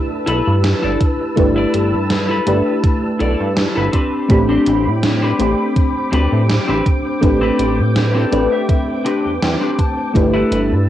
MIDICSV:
0, 0, Header, 1, 7, 480
1, 0, Start_track
1, 0, Tempo, 731707
1, 901, Time_signature, 4, 2, 24, 8
1, 7144, End_track
2, 0, Start_track
2, 0, Title_t, "String machine"
2, 0, Program_c, 0, 50
2, 0, Note_on_c, 0, 71, 73
2, 0, Note_on_c, 0, 81, 67
2, 0, Note_on_c, 0, 88, 82
2, 2552, Note_off_c, 0, 81, 0
2, 2552, Note_off_c, 0, 88, 0
2, 2553, Note_off_c, 0, 71, 0
2, 2577, Note_on_c, 0, 79, 71
2, 2578, Note_on_c, 0, 86, 82
2, 2579, Note_on_c, 0, 60, 70
2, 2579, Note_on_c, 0, 83, 67
2, 4480, Note_off_c, 0, 83, 0
2, 6633, Note_off_c, 0, 60, 0
2, 6633, Note_off_c, 0, 79, 0
2, 6633, Note_off_c, 0, 86, 0
2, 6659, Note_on_c, 0, 81, 72
2, 6660, Note_on_c, 0, 71, 73
2, 6661, Note_on_c, 0, 88, 86
2, 7144, Note_off_c, 0, 71, 0
2, 7144, Note_off_c, 0, 81, 0
2, 7144, Note_off_c, 0, 88, 0
2, 7144, End_track
3, 0, Start_track
3, 0, Title_t, "Clean electric guitar"
3, 0, Program_c, 1, 27
3, 174, Note_on_c, 1, 64, 108
3, 179, Note_on_c, 1, 69, 97
3, 186, Note_on_c, 1, 71, 119
3, 361, Note_off_c, 1, 64, 0
3, 364, Note_off_c, 1, 69, 0
3, 367, Note_off_c, 1, 71, 0
3, 541, Note_on_c, 1, 64, 86
3, 546, Note_on_c, 1, 69, 74
3, 554, Note_on_c, 1, 74, 89
3, 657, Note_off_c, 1, 64, 0
3, 660, Note_off_c, 1, 69, 0
3, 663, Note_off_c, 1, 74, 0
3, 1022, Note_on_c, 1, 64, 107
3, 1028, Note_on_c, 1, 69, 89
3, 1034, Note_on_c, 1, 74, 117
3, 1265, Note_off_c, 1, 64, 0
3, 1268, Note_off_c, 1, 69, 0
3, 1271, Note_off_c, 1, 74, 0
3, 1500, Note_on_c, 1, 64, 88
3, 1506, Note_on_c, 1, 69, 76
3, 1514, Note_on_c, 1, 71, 98
3, 1800, Note_off_c, 1, 64, 0
3, 1804, Note_off_c, 1, 69, 0
3, 1807, Note_off_c, 1, 71, 0
3, 2094, Note_on_c, 1, 64, 105
3, 2099, Note_on_c, 1, 69, 96
3, 2107, Note_on_c, 1, 74, 113
3, 2281, Note_off_c, 1, 64, 0
3, 2284, Note_off_c, 1, 69, 0
3, 2288, Note_off_c, 1, 74, 0
3, 2462, Note_on_c, 1, 64, 81
3, 2468, Note_on_c, 1, 69, 76
3, 2474, Note_on_c, 1, 71, 91
3, 2573, Note_on_c, 1, 60, 90
3, 2575, Note_off_c, 1, 64, 0
3, 2578, Note_off_c, 1, 71, 0
3, 2578, Note_on_c, 1, 62, 83
3, 2579, Note_off_c, 1, 69, 0
3, 2581, Note_on_c, 1, 67, 81
3, 2586, Note_on_c, 1, 71, 104
3, 2868, Note_off_c, 1, 60, 0
3, 2870, Note_off_c, 1, 62, 0
3, 2872, Note_off_c, 1, 67, 0
3, 2875, Note_off_c, 1, 71, 0
3, 2944, Note_on_c, 1, 60, 110
3, 2947, Note_on_c, 1, 62, 94
3, 2953, Note_on_c, 1, 67, 95
3, 2956, Note_on_c, 1, 72, 115
3, 3186, Note_off_c, 1, 60, 0
3, 3187, Note_off_c, 1, 62, 0
3, 3191, Note_off_c, 1, 67, 0
3, 3192, Note_off_c, 1, 72, 0
3, 3425, Note_on_c, 1, 60, 86
3, 3429, Note_on_c, 1, 62, 78
3, 3434, Note_on_c, 1, 67, 79
3, 3437, Note_on_c, 1, 71, 97
3, 3723, Note_off_c, 1, 60, 0
3, 3725, Note_off_c, 1, 62, 0
3, 3727, Note_off_c, 1, 67, 0
3, 3729, Note_off_c, 1, 71, 0
3, 4016, Note_on_c, 1, 60, 113
3, 4019, Note_on_c, 1, 62, 99
3, 4024, Note_on_c, 1, 67, 101
3, 4029, Note_on_c, 1, 71, 117
3, 4202, Note_off_c, 1, 60, 0
3, 4204, Note_off_c, 1, 62, 0
3, 4206, Note_off_c, 1, 67, 0
3, 4209, Note_off_c, 1, 71, 0
3, 4380, Note_on_c, 1, 60, 82
3, 4384, Note_on_c, 1, 62, 78
3, 4388, Note_on_c, 1, 67, 76
3, 4393, Note_on_c, 1, 71, 92
3, 4496, Note_off_c, 1, 60, 0
3, 4499, Note_off_c, 1, 62, 0
3, 4501, Note_off_c, 1, 67, 0
3, 4503, Note_off_c, 1, 71, 0
3, 4862, Note_on_c, 1, 60, 107
3, 4865, Note_on_c, 1, 62, 95
3, 4870, Note_on_c, 1, 67, 95
3, 4873, Note_on_c, 1, 71, 112
3, 5105, Note_off_c, 1, 60, 0
3, 5107, Note_off_c, 1, 62, 0
3, 5109, Note_off_c, 1, 67, 0
3, 5111, Note_off_c, 1, 71, 0
3, 5343, Note_on_c, 1, 60, 85
3, 5346, Note_on_c, 1, 62, 75
3, 5350, Note_on_c, 1, 67, 78
3, 5356, Note_on_c, 1, 69, 91
3, 5464, Note_on_c, 1, 74, 69
3, 5581, Note_off_c, 1, 74, 0
3, 5588, Note_on_c, 1, 76, 75
3, 5642, Note_off_c, 1, 60, 0
3, 5643, Note_off_c, 1, 62, 0
3, 5645, Note_off_c, 1, 67, 0
3, 5648, Note_off_c, 1, 69, 0
3, 5693, Note_off_c, 1, 76, 0
3, 5703, Note_on_c, 1, 76, 72
3, 5933, Note_on_c, 1, 60, 107
3, 5938, Note_on_c, 1, 62, 98
3, 5942, Note_on_c, 1, 67, 103
3, 5945, Note_on_c, 1, 71, 112
3, 6044, Note_off_c, 1, 76, 0
3, 6067, Note_on_c, 1, 79, 75
3, 6121, Note_off_c, 1, 60, 0
3, 6123, Note_off_c, 1, 62, 0
3, 6125, Note_off_c, 1, 67, 0
3, 6127, Note_off_c, 1, 71, 0
3, 6172, Note_off_c, 1, 79, 0
3, 6181, Note_on_c, 1, 79, 69
3, 6303, Note_on_c, 1, 60, 84
3, 6306, Note_on_c, 1, 62, 80
3, 6312, Note_on_c, 1, 67, 77
3, 6315, Note_on_c, 1, 71, 89
3, 6404, Note_off_c, 1, 79, 0
3, 6418, Note_off_c, 1, 60, 0
3, 6419, Note_off_c, 1, 62, 0
3, 6419, Note_on_c, 1, 81, 73
3, 6423, Note_off_c, 1, 67, 0
3, 6424, Note_off_c, 1, 71, 0
3, 6643, Note_off_c, 1, 81, 0
3, 6780, Note_on_c, 1, 64, 109
3, 6786, Note_on_c, 1, 69, 89
3, 6793, Note_on_c, 1, 71, 116
3, 7024, Note_off_c, 1, 64, 0
3, 7027, Note_off_c, 1, 69, 0
3, 7031, Note_off_c, 1, 71, 0
3, 7144, End_track
4, 0, Start_track
4, 0, Title_t, "FM electric piano"
4, 0, Program_c, 2, 5
4, 0, Control_c, 2, 64, 127
4, 0, Note_on_c, 2, 57, 74
4, 0, Note_on_c, 2, 62, 73
4, 0, Note_on_c, 2, 64, 70
4, 0, Note_on_c, 2, 67, 70
4, 0, Note_on_c, 2, 71, 82
4, 870, Note_off_c, 2, 57, 0
4, 872, Note_off_c, 2, 62, 0
4, 875, Note_off_c, 2, 64, 0
4, 877, Note_off_c, 2, 67, 0
4, 880, Note_off_c, 2, 71, 0
4, 891, Note_on_c, 2, 57, 88
4, 896, Note_on_c, 2, 62, 77
4, 899, Note_on_c, 2, 64, 79
4, 906, Note_on_c, 2, 67, 78
4, 911, Note_on_c, 2, 71, 91
4, 1589, Note_off_c, 2, 57, 0
4, 1591, Note_off_c, 2, 62, 0
4, 1593, Note_off_c, 2, 64, 0
4, 1596, Note_off_c, 2, 67, 0
4, 1599, Note_off_c, 2, 71, 0
4, 1616, Note_on_c, 2, 57, 84
4, 1619, Note_on_c, 2, 62, 78
4, 1620, Note_on_c, 2, 64, 82
4, 1624, Note_on_c, 2, 67, 75
4, 1626, Note_on_c, 2, 71, 94
4, 1741, Note_off_c, 2, 57, 0
4, 1743, Note_off_c, 2, 62, 0
4, 1743, Note_off_c, 2, 64, 0
4, 1745, Note_off_c, 2, 67, 0
4, 1746, Note_off_c, 2, 71, 0
4, 2589, Control_c, 2, 64, 0
4, 2711, Control_c, 2, 64, 127
4, 2810, Note_on_c, 2, 57, 86
4, 2813, Note_on_c, 2, 60, 82
4, 2819, Note_on_c, 2, 62, 84
4, 2823, Note_on_c, 2, 67, 80
4, 2830, Note_on_c, 2, 83, 98
4, 3508, Note_off_c, 2, 57, 0
4, 3510, Note_off_c, 2, 60, 0
4, 3513, Note_off_c, 2, 62, 0
4, 3515, Note_off_c, 2, 67, 0
4, 3518, Note_off_c, 2, 83, 0
4, 3531, Note_on_c, 2, 57, 81
4, 3536, Note_on_c, 2, 60, 76
4, 3540, Note_on_c, 2, 62, 71
4, 3545, Note_on_c, 2, 67, 72
4, 3551, Note_on_c, 2, 83, 90
4, 4709, Note_off_c, 2, 57, 0
4, 4711, Note_off_c, 2, 60, 0
4, 4713, Note_off_c, 2, 62, 0
4, 4716, Note_off_c, 2, 67, 0
4, 4719, Note_off_c, 2, 83, 0
4, 4728, Note_on_c, 2, 57, 86
4, 4732, Note_on_c, 2, 60, 82
4, 4737, Note_on_c, 2, 62, 77
4, 4744, Note_on_c, 2, 67, 76
4, 4749, Note_on_c, 2, 71, 95
4, 5427, Note_off_c, 2, 57, 0
4, 5429, Note_off_c, 2, 60, 0
4, 5432, Note_off_c, 2, 62, 0
4, 5436, Note_off_c, 2, 67, 0
4, 5438, Note_off_c, 2, 71, 0
4, 5456, Note_on_c, 2, 57, 86
4, 5457, Note_on_c, 2, 60, 79
4, 5460, Note_on_c, 2, 62, 74
4, 5464, Note_on_c, 2, 67, 78
4, 5467, Note_on_c, 2, 71, 92
4, 5581, Note_off_c, 2, 57, 0
4, 5582, Note_off_c, 2, 60, 0
4, 5583, Note_off_c, 2, 62, 0
4, 5585, Note_off_c, 2, 67, 0
4, 5587, Note_off_c, 2, 71, 0
4, 6649, Note_on_c, 2, 57, 86
4, 6656, Note_on_c, 2, 62, 77
4, 6660, Note_on_c, 2, 64, 82
4, 6665, Note_on_c, 2, 67, 79
4, 6668, Control_c, 2, 64, 0
4, 6670, Note_on_c, 2, 71, 94
4, 6765, Control_c, 2, 64, 127
4, 7144, Note_off_c, 2, 57, 0
4, 7144, Note_off_c, 2, 62, 0
4, 7144, Note_off_c, 2, 64, 0
4, 7144, Note_off_c, 2, 67, 0
4, 7144, Note_off_c, 2, 71, 0
4, 7144, End_track
5, 0, Start_track
5, 0, Title_t, "Analog synth bass"
5, 0, Program_c, 3, 38
5, 182, Note_on_c, 3, 35, 95
5, 277, Note_off_c, 3, 35, 0
5, 312, Note_on_c, 3, 43, 93
5, 486, Note_off_c, 3, 43, 0
5, 551, Note_on_c, 3, 31, 94
5, 634, Note_off_c, 3, 31, 0
5, 901, Note_on_c, 3, 31, 99
5, 1084, Note_off_c, 3, 31, 0
5, 1143, Note_on_c, 3, 31, 90
5, 1271, Note_on_c, 3, 43, 87
5, 1281, Note_off_c, 3, 31, 0
5, 1577, Note_off_c, 3, 43, 0
5, 1622, Note_on_c, 3, 31, 99
5, 1717, Note_off_c, 3, 31, 0
5, 2102, Note_on_c, 3, 35, 100
5, 2197, Note_off_c, 3, 35, 0
5, 2231, Note_on_c, 3, 43, 90
5, 2406, Note_off_c, 3, 43, 0
5, 2471, Note_on_c, 3, 31, 92
5, 2554, Note_off_c, 3, 31, 0
5, 2820, Note_on_c, 3, 33, 98
5, 3004, Note_off_c, 3, 33, 0
5, 3063, Note_on_c, 3, 33, 96
5, 3188, Note_on_c, 3, 45, 86
5, 3198, Note_off_c, 3, 33, 0
5, 3495, Note_off_c, 3, 45, 0
5, 3539, Note_on_c, 3, 33, 101
5, 3635, Note_off_c, 3, 33, 0
5, 4019, Note_on_c, 3, 38, 94
5, 4115, Note_off_c, 3, 38, 0
5, 4147, Note_on_c, 3, 45, 93
5, 4324, Note_off_c, 3, 45, 0
5, 4387, Note_on_c, 3, 33, 94
5, 4472, Note_off_c, 3, 33, 0
5, 4741, Note_on_c, 3, 33, 98
5, 4924, Note_off_c, 3, 33, 0
5, 4980, Note_on_c, 3, 33, 95
5, 5109, Note_on_c, 3, 45, 84
5, 5119, Note_off_c, 3, 33, 0
5, 5416, Note_off_c, 3, 45, 0
5, 5463, Note_on_c, 3, 33, 99
5, 5557, Note_off_c, 3, 33, 0
5, 6070, Note_on_c, 3, 40, 45
5, 6159, Note_off_c, 3, 40, 0
5, 6180, Note_on_c, 3, 40, 86
5, 6276, Note_off_c, 3, 40, 0
5, 6661, Note_on_c, 3, 31, 101
5, 6844, Note_off_c, 3, 31, 0
5, 6899, Note_on_c, 3, 31, 89
5, 7026, Note_on_c, 3, 43, 87
5, 7036, Note_off_c, 3, 31, 0
5, 7144, Note_off_c, 3, 43, 0
5, 7144, End_track
6, 0, Start_track
6, 0, Title_t, "Muted clean electric guitar strokes"
6, 783, Note_on_c, 9, 29, 30
6, 848, Note_off_c, 9, 29, 0
6, 4623, Note_on_c, 9, 29, 32
6, 4689, Note_off_c, 9, 29, 0
6, 6539, Note_on_c, 9, 29, 30
6, 6605, Note_off_c, 9, 29, 0
6, 7144, End_track
7, 0, Start_track
7, 0, Title_t, "Drums"
7, 181, Note_on_c, 9, 42, 65
7, 247, Note_off_c, 9, 42, 0
7, 420, Note_on_c, 9, 38, 117
7, 420, Note_on_c, 9, 42, 77
7, 486, Note_off_c, 9, 38, 0
7, 486, Note_off_c, 9, 42, 0
7, 660, Note_on_c, 9, 36, 99
7, 660, Note_on_c, 9, 42, 69
7, 726, Note_off_c, 9, 36, 0
7, 726, Note_off_c, 9, 42, 0
7, 901, Note_on_c, 9, 36, 116
7, 901, Note_on_c, 9, 42, 80
7, 966, Note_off_c, 9, 36, 0
7, 966, Note_off_c, 9, 42, 0
7, 1141, Note_on_c, 9, 42, 67
7, 1206, Note_off_c, 9, 42, 0
7, 1378, Note_on_c, 9, 38, 116
7, 1378, Note_on_c, 9, 42, 76
7, 1444, Note_off_c, 9, 38, 0
7, 1444, Note_off_c, 9, 42, 0
7, 1619, Note_on_c, 9, 42, 67
7, 1685, Note_off_c, 9, 42, 0
7, 1860, Note_on_c, 9, 36, 121
7, 1860, Note_on_c, 9, 42, 77
7, 1926, Note_off_c, 9, 36, 0
7, 1926, Note_off_c, 9, 42, 0
7, 2100, Note_on_c, 9, 42, 67
7, 2166, Note_off_c, 9, 42, 0
7, 2339, Note_on_c, 9, 38, 127
7, 2339, Note_on_c, 9, 42, 85
7, 2405, Note_off_c, 9, 38, 0
7, 2405, Note_off_c, 9, 42, 0
7, 2579, Note_on_c, 9, 42, 69
7, 2580, Note_on_c, 9, 36, 61
7, 2645, Note_off_c, 9, 36, 0
7, 2645, Note_off_c, 9, 42, 0
7, 2819, Note_on_c, 9, 36, 115
7, 2819, Note_on_c, 9, 42, 78
7, 2884, Note_off_c, 9, 42, 0
7, 2885, Note_off_c, 9, 36, 0
7, 3059, Note_on_c, 9, 42, 66
7, 3125, Note_off_c, 9, 42, 0
7, 3300, Note_on_c, 9, 38, 120
7, 3300, Note_on_c, 9, 42, 78
7, 3365, Note_off_c, 9, 38, 0
7, 3365, Note_off_c, 9, 42, 0
7, 3539, Note_on_c, 9, 42, 68
7, 3604, Note_off_c, 9, 42, 0
7, 3780, Note_on_c, 9, 36, 122
7, 3780, Note_on_c, 9, 42, 77
7, 3845, Note_off_c, 9, 36, 0
7, 3845, Note_off_c, 9, 42, 0
7, 4020, Note_on_c, 9, 42, 66
7, 4086, Note_off_c, 9, 42, 0
7, 4261, Note_on_c, 9, 38, 122
7, 4261, Note_on_c, 9, 42, 82
7, 4326, Note_off_c, 9, 38, 0
7, 4326, Note_off_c, 9, 42, 0
7, 4500, Note_on_c, 9, 36, 106
7, 4501, Note_on_c, 9, 42, 69
7, 4566, Note_off_c, 9, 36, 0
7, 4567, Note_off_c, 9, 42, 0
7, 4740, Note_on_c, 9, 36, 115
7, 4741, Note_on_c, 9, 42, 79
7, 4805, Note_off_c, 9, 36, 0
7, 4807, Note_off_c, 9, 42, 0
7, 4980, Note_on_c, 9, 42, 64
7, 5046, Note_off_c, 9, 42, 0
7, 5221, Note_on_c, 9, 38, 118
7, 5221, Note_on_c, 9, 42, 75
7, 5287, Note_off_c, 9, 38, 0
7, 5287, Note_off_c, 9, 42, 0
7, 5461, Note_on_c, 9, 42, 65
7, 5527, Note_off_c, 9, 42, 0
7, 5700, Note_on_c, 9, 36, 117
7, 5701, Note_on_c, 9, 42, 76
7, 5766, Note_off_c, 9, 36, 0
7, 5767, Note_off_c, 9, 42, 0
7, 5942, Note_on_c, 9, 42, 64
7, 6008, Note_off_c, 9, 42, 0
7, 6182, Note_on_c, 9, 38, 119
7, 6182, Note_on_c, 9, 42, 76
7, 6248, Note_off_c, 9, 38, 0
7, 6248, Note_off_c, 9, 42, 0
7, 6420, Note_on_c, 9, 36, 65
7, 6422, Note_on_c, 9, 42, 65
7, 6486, Note_off_c, 9, 36, 0
7, 6488, Note_off_c, 9, 42, 0
7, 6660, Note_on_c, 9, 36, 113
7, 6664, Note_on_c, 9, 42, 74
7, 6725, Note_off_c, 9, 36, 0
7, 6729, Note_off_c, 9, 42, 0
7, 6901, Note_on_c, 9, 42, 62
7, 6967, Note_off_c, 9, 42, 0
7, 7144, End_track
0, 0, End_of_file